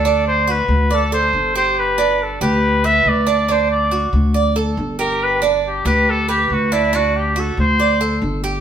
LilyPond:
<<
  \new Staff \with { instrumentName = "Trumpet" } { \time 4/4 \key g \major \tempo 4 = 140 a'8 c''8 b'4 a'8 c''4 c''8 | b'4 a'8 b'4 e''8 d''4 | c''8 d''4 r2 bes'8 | b'8 d'8 g'8 b'8 a'8 g'8 fis'8 e'8 |
fis'8 g'8 a'8 c''4. r4 | }
  \new Staff \with { instrumentName = "Cuban tres" } { \time 4/4 \key g \major d'4 fis'4 d''8 a'4 g'8~ | g'8 d'4 g'4 b'4 d'8 | d'4 fis'4 d''8 a'4 g'8~ | g'8 d'4 g'4 b'4 d'8 |
d'4 fis'4 d''8 a'4 g'8 | }
  \new Staff \with { instrumentName = "Upright bass" } { \clef bass \time 4/4 \key g \major d,4. d,4. g,,4~ | g,,4. d,4. d,4~ | d,4. d,4. g,,4~ | g,,4. d,4. d,4~ |
d,4. d,4. g,,4 | }
>>